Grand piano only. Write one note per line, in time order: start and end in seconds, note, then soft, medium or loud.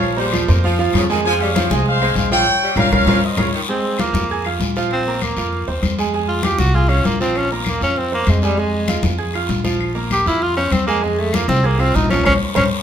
0.00 0.12 F3 loud
0.00 0.12 F4 loud
0.00 0.13 F5 loud
0.16 0.30 A#3 medium
0.16 0.30 A#4 medium
0.16 0.30 C5 medium
0.33 0.46 F3 loud
0.33 0.46 F4 medium
0.33 0.46 F5 medium
0.48 0.61 A#3 medium
0.48 0.61 A#4 medium
0.48 0.61 C5 medium
0.64 0.77 F3 loud
0.64 0.77 F4 medium
0.64 0.77 F5 loud
0.79 1.04 F3 loud
0.79 1.04 F4 loud
0.79 1.05 F5 loud
1.10 1.22 G#3 loud
1.10 1.22 G#4 medium
1.10 1.22 G#5 loud
1.25 1.50 G#3 medium
1.25 1.50 G#4 medium
1.25 1.50 G#5 medium
1.55 1.68 C4 medium
1.55 1.68 C5 medium
1.55 1.69 F5 medium
1.71 1.96 G#3 loud
1.71 1.96 G#4 medium
1.71 1.96 G#5 loud
2.02 2.27 C4 medium
2.02 2.27 C5 medium
2.02 2.27 F5 medium
2.32 2.44 F3 loud
2.32 2.44 F4 loud
2.32 2.45 F5 loud
2.77 2.87 C#4 loud
2.77 2.87 F4 loud
2.77 2.87 A#4 loud
2.92 3.02 C#4 medium
2.92 3.02 F4 loud
2.92 3.02 A#4 loud
3.08 3.18 C#4 loud
3.08 3.18 F4 loud
3.08 3.18 A#4 loud
3.37 3.48 C#4 medium
3.37 3.48 F4 loud
3.37 3.48 A#4 medium
3.69 3.94 G#3 medium
3.69 3.94 G#4 medium
3.69 3.94 G#5 medium
3.99 4.24 F4 medium
3.99 4.25 F5 medium
3.99 4.25 F6 medium
4.30 4.43 G#4 medium
4.30 4.43 G#5 medium
4.30 4.43 G#6 medium
4.46 4.71 F4 medium
4.46 4.71 F5 medium
4.46 4.71 F6 medium
4.77 5.01 F3 loud
4.77 5.01 F4 loud
4.77 5.02 F5 loud
5.07 5.32 A#3 medium
5.07 5.32 A#4 medium
5.07 5.32 A#5 medium
5.38 5.62 F4 medium
5.38 5.63 F5 medium
5.38 5.63 F6 medium
5.68 5.93 C4 medium
5.68 5.93 C5 medium
5.68 5.93 C6 medium
5.98 6.11 G#3 medium
5.98 6.11 G#4 loud
5.98 6.11 G#5 loud
6.14 6.39 G#3 medium
6.14 6.39 G#4 medium
6.14 6.39 G#5 medium
6.44 6.69 F4 medium
6.44 6.69 F5 medium
6.44 6.70 F6 medium
6.74 6.87 G#4 medium
6.74 6.87 G#5 medium
6.74 6.87 G#6 medium
6.89 7.15 F4 medium
6.89 7.15 F5 medium
6.89 7.15 F6 medium
7.20 7.45 F3 loud
7.20 7.46 F4 medium
7.20 7.46 F5 medium
7.51 7.76 A#3 medium
7.51 7.77 A#4 medium
7.51 7.77 A#5 medium
7.82 8.07 F4 medium
7.82 8.07 F5 medium
7.82 8.07 F6 medium
8.12 8.37 C4 medium
8.12 8.37 C5 medium
8.12 8.37 C6 medium
8.42 8.55 G#3 medium
8.42 8.56 G#4 medium
8.42 8.56 G#5 loud
8.57 8.83 G#3 medium
8.57 8.83 G#4 medium
8.57 8.83 G#5 medium
8.89 9.14 F4 medium
8.89 9.14 F5 medium
8.89 9.14 F6 medium
9.19 9.32 G#4 medium
9.19 9.31 G#5 medium
9.19 9.31 G#6 medium
9.35 9.60 F4 medium
9.35 9.60 F5 medium
9.35 9.60 F6 medium
9.64 9.90 F3 medium
9.64 9.90 F4 medium
9.64 9.90 F5 loud
9.95 10.20 A#3 medium
9.95 10.21 A#4 medium
9.95 10.21 A#5 medium
10.26 10.51 F4 medium
10.26 10.52 F5 medium
10.26 10.52 F6 medium
10.57 10.82 C4 medium
10.57 10.82 C5 medium
10.57 10.83 C6 medium
10.87 11.00 G#3 medium
10.87 11.00 G#4 loud
10.87 11.01 G#5 loud
11.02 11.28 G#3 medium
11.02 11.28 G#4 medium
11.02 11.28 G#5 medium
11.33 11.59 F4 medium
11.33 11.59 F5 medium
11.33 11.60 F6 medium
11.63 11.77 G#4 medium
11.63 11.76 G#5 medium
11.63 11.77 G#6 medium
11.79 12.05 F4 medium
11.79 12.04 F5 medium
11.79 12.05 F6 medium
12.09 12.23 F3 medium
12.09 12.23 F4 loud
12.09 12.23 F5 medium
12.24 12.35 A#4 medium
12.24 12.35 C5 medium
12.24 12.35 C#5 medium
12.55 12.66 A#4 loud
12.55 12.66 C5 loud
12.55 12.66 C#5 loud